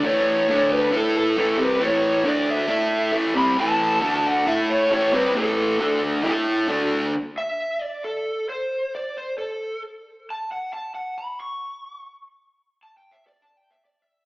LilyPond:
<<
  \new Staff \with { instrumentName = "Lead electric guitar" } { \time 4/4 \key a \mixolydian \tempo 4 = 135 cis''4. b'8 a'8 a'4 b'8 | cis''4 d''8 e''4. r8 b''8 | a''4. fis''8 e''8 cis''8 cis''8 b'8 | a'4. r2 r8 |
r8 e''4 d''8 a'4 c''4 | d''8 c''8 a'4 r4 a''8 fis''8 | a''8 fis''8 b''8 cis'''2 r8 | \tuplet 3/2 { r4 a''8 g''8 e''8 d''8 a''8 g''8 e''8 d''8 e''4 } | }
  \new Staff \with { instrumentName = "Distorted electric guitar" } { \time 4/4 \key a \mixolydian <a, e a>4 <d a d'>4 <a e' a'>4 <a, e a>8 <c g c'>8 | <a, e a>4 <d a d'>4 <a e' a'>4 <a, e a>8 <c g c'>8 | <a, e a>4 <d a d'>4 <a e' a'>4 <a, e a>8 <c g c'>8 | <a, e a>4 <d a d'>4 <a e' a'>4 <d a d'>4 |
r1 | r1 | r1 | r1 | }
>>